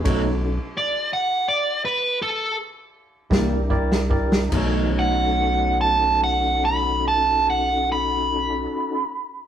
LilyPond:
<<
  \new Staff \with { instrumentName = "Overdriven electric guitar" } { \time 12/8 \key b \mixolydian \tempo 4. = 48 r4 d''8 fis''8 d''8 b'8 a'8 r2 r8 | r8 fis''4 a''8 fis''8 b''8 a''8 fis''8 b''2 | }
  \new Staff \with { instrumentName = "Tine electric piano" } { \time 12/8 \key b \mixolydian <dis' fis' a' cis''>8 r1 <e' g' bes' d''>8 <e' g' bes' d''>8 <e' g' bes' d''>8 | <dis' fis' a' cis''>1. | }
  \new Staff \with { instrumentName = "Tonewheel organ" } { \time 12/8 \key b \mixolydian <cis' dis' fis' a'>4 r2. r8 <d' e' g' bes'>4. | <e dis' fis' a'>8 <cis' dis' fis' a'>1~ <cis' dis' fis' a'>4. | }
  \new Staff \with { instrumentName = "Clean electric guitar" } { \clef bass \time 12/8 \key b \mixolydian <b, fis a dis'>8 r1 <c e bes d'>8 r4 | <b, fis a dis'>1. | }
  \new Staff \with { instrumentName = "Fingered electric bass" } { \clef bass \time 12/8 \key b \mixolydian b,,4 r2. r8 c,4. | b,,1. | }
  \new DrumStaff \with { instrumentName = "Drums" } \drummode { \time 12/8 <cymc bd cymr>4. r4. r4. <bd sn>8 bd16 sn16 bd16 sn16 | <cymc bd>4. r4. r4. r4. | }
>>